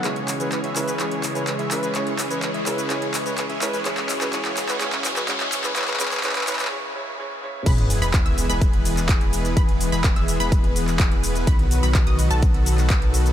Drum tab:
CC |--------------------------------|--------------------------------|--------------------------------|--------------------------------|
HH |x-x-o-x-x-x-o-x-x-x-o-x-x-x-o-x-|x-x-o-x-x-x-o-x-x-x-o-x-x-x-o-x-|x-x-o-x-x-x-o-x-x-x-o-x-x-x-o-x-|x-x-o-x-x-x-o-x-----------------|
SH |x---x-x-x---x-x-x---x-x-x---x-x-|x---x-x-x---x-x-x---x-x-x---x-x-|x---x-x-x---x-x-x---x-x-x---x-x-|x---x-x-x---x-x-----------------|
CP |x---x---x---x---x---x---x---x---|x---x---x---x---x---x---x---x---|x-x-x-x-x-x-x-x-x-x-x-x-x-x-x-x-|xxxxxxxxxxxxxxxx----------------|
BD |--------------------------------|--------------------------------|--------------------------------|--------------------------------|

CC |x-------------------------------|--------------------------------|--------------------------------|
HH |x-x-o-x-x-x-o-x-x-x-o-x-x-x-o-x-|x-x-o-x-x-x-o-x-x-x-o-x-x-x-o-x-|x-x-o-x-x-x-o-x-x-x-o-x-x-x-o-x-|
SH |x---x-x-x---x-x-x---x-x-x---x-x-|x---x-x-x---x-x-x---x-x-x---x-x-|x---x-x-x---x-x-x---x-x-x---x-x-|
CP |--------x-------------x-x-------|--------x-------------x-x-------|--------x-------------x-x-------|
BD |o-------o-------o-------o-------|o-------o-------o-------o-------|o-------o-------o-------o-------|